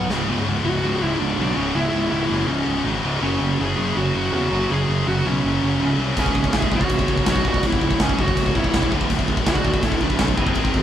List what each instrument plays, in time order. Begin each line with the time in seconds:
Already playing: distorted electric guitar B3
0.10 picked electric bass C#1, distorted electric guitar C#2 G#2 C#3, snare
0.28 picked electric bass C#1, distorted electric guitar C#2 G#2 C#3
0.36 distorted electric guitar C#2 G#2
0.43 picked electric bass C#1, distorted electric guitar C#2 G#2
0.51 distorted electric guitar C#2 G#2
0.58 distorted electric guitar C#2 G#2
0.65 picked electric bass C#1, distorted electric guitar C#2 G#2, lead electric guitar F#4
0.73 distorted electric guitar C#2 G#2
0.81 picked electric bass C#1, distorted electric guitar C#2 G#2 C#3
0.89 distorted electric guitar C#2 G#2
0.97 distorted electric guitar C#2 G#2
1.01 picked electric bass C#1, distorted electric guitar C#2 G#2, lead electric guitar E4
1.12 distorted electric guitar C#2 G#2
1.19 picked electric bass C#1, distorted electric guitar C#2 G#2, lead electric guitar D4
1.28 distorted electric guitar C#2 G#2
1.35 picked electric bass B1, distorted electric guitar C#2 G#2
1.40 distorted electric guitar C#2 G#2 C#3
1.51 distorted electric guitar C#2 G#2
1.56 picked electric bass C#1, distorted electric guitar C#2 G#2 C#3, lead electric guitar C#4
1.66 distorted electric guitar C#2 G#2
1.74 picked electric bass C#1, distorted electric guitar C#2 G#2 C#3, lead electric guitar E4
1.82 distorted electric guitar C#2 G#2
1.90 distorted electric guitar C#2 G#2
1.94 picked electric bass C#1, distorted electric guitar C#2
1.98 distorted electric guitar G#2
2.05 distorted electric guitar C#2 G#2
2.12 picked electric bass C#1, distorted electric guitar C#2 G#2, lead electric guitar E4
2.21 distorted electric guitar C#2 G#2
2.28 picked electric bass F#1, distorted electric guitar C#2 G#2 C#3
2.37 distorted electric guitar C#2 G#2
2.44 distorted electric guitar C#2 G#2
2.48 picked electric bass C#1, distorted electric guitar C#2, lead electric guitar C#4
2.52 distorted electric guitar C#2 G#2
2.60 distorted electric guitar C#2 G#2
2.67 picked electric bass C#1, distorted electric guitar C#2 G#2
2.75 distorted electric guitar C#2 G#2
2.82 picked electric bass G#1, distorted electric guitar C#2 G#2
2.88 distorted electric guitar C#2 C#3
2.93 distorted electric guitar G#2
2.98 distorted electric guitar C#2 G#2
3.03 picked electric bass C#1, distorted electric guitar C#2 G#2 C#3
3.14 distorted electric guitar C#2 G#2
3.21 picked electric bass F#1, distorted electric guitar F#2 C#3 F#3, lead electric guitar C#4
3.29 distorted electric guitar F#2 C#3
3.36 distorted electric guitar F#2 C#3
3.41 picked electric bass F#1
3.45 distorted electric guitar F#2 C#3
3.52 distorted electric guitar F#2 C#3
3.59 picked electric bass F#1, distorted electric guitar F#2 C#3, lead electric guitar G#4
3.67 distorted electric guitar F#2 C#3
3.76 picked electric bass F#1, distorted electric guitar F#2 C#3 F#3
3.83 distorted electric guitar F#2 C#3
3.91 distorted electric guitar F#2 C#3
3.97 picked electric bass F#1, distorted electric guitar F#2 C#3, lead electric guitar F#4
4.06 distorted electric guitar F#2 C#3
4.15 picked electric bass F#1, distorted electric guitar F#2 C#3, lead electric guitar F#4
4.22 distorted electric guitar F#2 C#3
4.29 picked electric bass E2, distorted electric guitar F#2 C#3
4.34 distorted electric guitar F#2 F#3, lead electric guitar F#4
4.39 distorted electric guitar C#3
4.45 distorted electric guitar F#2 C#3
4.51 picked electric bass F#1, distorted electric guitar F#2 C#3 F#3
4.61 distorted electric guitar F#2 C#3
4.69 picked electric bass F#1, distorted electric guitar F#2 C#3 F#3, lead electric guitar G#4
4.77 distorted electric guitar F#2 C#3
4.85 picked electric bass F#1, distorted electric guitar F#2 C#3
4.92 distorted electric guitar F#2 C#3
5.00 distorted electric guitar F#2 C#3
5.07 picked electric bass F#1, distorted electric guitar F#2 C#3, lead electric guitar F#4
5.17 distorted electric guitar F#2 C#3
5.23 picked electric bass B1, distorted electric guitar F#2 C#3 F#3, lead electric guitar C#4
5.32 distorted electric guitar F#2 C#3
5.39 distorted electric guitar F#2 C#3
5.44 picked electric bass F#1, distorted electric guitar F#2 C#3
5.55 distorted electric guitar F#2 C#3
5.62 picked electric bass F#1, distorted electric guitar F#2 C#3
5.69 distorted electric guitar F#2 C#3
5.78 picked electric bass C#1, distorted electric guitar F#2 C#3 F#3
5.85 distorted electric guitar F#2 C#3
5.93 distorted electric guitar F#2 C#3
5.98 picked electric bass C2, distorted electric guitar F#2 C#3 F#3
6.08 distorted electric guitar F#2 C#3
6.16 picked electric bass C#1, distorted electric guitar C#2 G#2 C#3, lead electric guitar C#4 G#4, kick, crash
6.23 distorted electric guitar C#2 G#2, kick
6.32 picked electric bass C#1, distorted electric guitar C#2 G#2, kick
6.39 distorted electric guitar C#2 G#2
6.44 distorted electric guitar C#2 G#2, kick
6.53 picked electric bass C#1, distorted electric guitar C#2 G#2, lead electric guitar G#4 E5, kick, snare, crash
6.62 distorted electric guitar C#2 G#2, kick
6.69 picked electric bass C#1, distorted electric guitar C#2 G#2 C#3, kick
6.74 distorted electric guitar C#2, lead electric guitar F#4 C#5
6.79 distorted electric guitar C#2 G#2, kick
6.85 distorted electric guitar C#2 G#2, crash
6.90 picked electric bass C#1, distorted electric guitar C#2, kick
6.94 distorted electric guitar G#2
6.99 distorted electric guitar C#2 G#2, kick
7.08 picked electric bass C#1, distorted electric guitar C#2 G#2, kick
7.16 distorted electric guitar C#2 G#2, kick
7.23 picked electric bass B1, distorted electric guitar C#2 G#2, kick, snare, crash
7.29 distorted electric guitar C#2 G#2 C#3, lead electric guitar F#4 C#5
7.36 kick
7.40 distorted electric guitar C#2 G#2
7.45 picked electric bass C#1, distorted electric guitar C#2 G#2 C#3, lead electric guitar F#4 D5, kick
7.54 distorted electric guitar C#2 G#2, kick
7.63 picked electric bass C#1, distorted electric guitar C#2 G#2 C#3, lead electric guitar E4 C#5, kick, crash
7.71 distorted electric guitar C#2 G#2, kick
7.79 picked electric bass C#1, distorted electric guitar C#2 G#2, kick
7.86 distorted electric guitar C#2 G#2
7.91 distorted electric guitar C#2 G#2, kick
8.00 picked electric bass C#1, distorted electric guitar C#2 G#2, lead electric guitar C#4 G#4, kick, snare, crash
8.09 distorted electric guitar C#2 G#2, kick
8.15 picked electric bass F#1, distorted electric guitar C#2 G#2, kick
8.20 distorted electric guitar C#3, lead electric guitar F#4 C#5
8.24 distorted electric guitar C#2 G#2
8.28 distorted electric guitar C#2 G#2, kick
8.37 picked electric bass C#1, distorted electric guitar C#2 G#2, kick, crash
8.46 distorted electric guitar C#2 G#2, kick
8.54 picked electric bass C#1, distorted electric guitar C#2 G#2, lead electric guitar E4 C#5, kick
8.61 distorted electric guitar C#2 G#2, kick
8.68 distorted electric guitar C#2 G#2
8.73 picked electric bass E1, distorted electric guitar C#2 G#2 C#3, kick, snare, crash
8.77 distorted electric guitar G#2
8.83 distorted electric guitar C#2 G#2, kick
8.90 picked electric bass D1, distorted electric guitar D2 A2 D3, kick
8.98 distorted electric guitar D2 A2, kick
9.06 distorted electric guitar D2 A2
9.10 picked electric bass D1, distorted electric guitar A2, kick, crash
9.14 distorted electric guitar D2
9.19 distorted electric guitar D2, kick
9.23 distorted electric guitar A2
9.28 picked electric bass D1, distorted electric guitar D2 A2, kick
9.37 distorted electric guitar D2 A2, kick
9.45 picked electric bass D1, distorted electric guitar D2 A2 D3, lead electric guitar F#4, kick, snare, crash
9.49 distorted electric guitar D2, lead electric guitar D5
9.53 distorted electric guitar A2, kick
9.60 distorted electric guitar D2 A2
9.65 picked electric bass D1, distorted electric guitar D2, kick
9.69 distorted electric guitar A2
9.74 distorted electric guitar D2 A2, kick
9.83 picked electric bass D1, distorted electric guitar D2 A2, lead electric guitar E4 A4, kick, crash
9.91 distorted electric guitar D2 A2, kick
9.98 picked electric bass D1, distorted electric guitar D2 A2 D3, lead electric guitar B4, kick
10.03 distorted electric guitar D2 A2, lead electric guitar D4
10.10 kick
10.14 distorted electric guitar D2 A2, lead electric guitar C#4
10.19 picked electric bass B1, distorted electric guitar D2 A2, lead electric guitar A4, kick, snare, crash
10.28 distorted electric guitar D2 A2, kick
10.37 picked electric bass F#1, distorted electric guitar D2 A2 D3, lead electric guitar C4 G#4, kick
10.47 kick
10.54 picked electric bass G#1, distorted electric guitar G#2 D#3 G#3, kick, crash
10.62 distorted electric guitar G#2 D#3, kick
10.70 distorted electric guitar G#2 D#3
10.74 picked electric bass G#1, distorted electric guitar G#2, kick
10.79 distorted electric guitar D#3